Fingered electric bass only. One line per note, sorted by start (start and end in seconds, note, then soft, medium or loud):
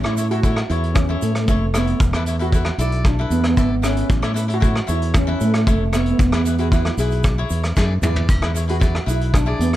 0.05 0.61 A2 medium
0.70 1.15 E2 medium
1.22 1.45 A2 medium
1.48 1.93 F1 medium
2.00 2.12 E1 medium
2.13 2.70 E2 medium
2.78 3.24 B1 medium
3.30 3.54 E2 medium
3.57 4.02 G#1 medium
4.09 4.21 A1 loud
4.23 4.79 A2 medium
4.89 5.34 E2 medium
5.41 5.64 A2 medium
5.67 6.12 F1 medium
6.19 6.31 E1 loud
6.33 6.89 E2 medium
6.97 7.43 B1 medium
7.50 7.73 E2 medium
7.77 8.00 F#2 medium
8.02 8.26 E2 medium
8.29 8.40 E1 medium
8.41 8.98 E2 medium
9.07 9.53 B1 medium
9.59 9.76 E2 medium